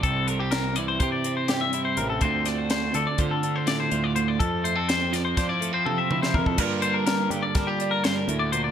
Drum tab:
CC |------------------|------------------|------------------|x-----------------|
HH |x-x-x-x-x-x-x-x-x-|x-x-x-x-x-x-x-x-x-|x-x-x-x-x-x-------|x-x-x-x-x-x-x-x-x-|
SD |----o-------o-----|--o-o-------o-----|----o-o-o------o--|----o---o---o-----|
T1 |------------------|------------------|------------o-----|------------------|
T2 |------------------|------------------|--------------o---|------------------|
BD |o-------o---------|o-------o---------|o-------o-------oo|o-------o---------|